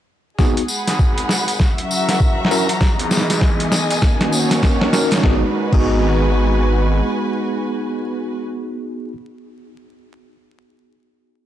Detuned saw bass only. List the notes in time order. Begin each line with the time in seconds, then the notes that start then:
0.39 G#1
0.88 G#1
2.09 F#1
2.51 A#1
2.99 G#1
3.29 G#1
3.72 B1
5.23 G#1
5.72 G#1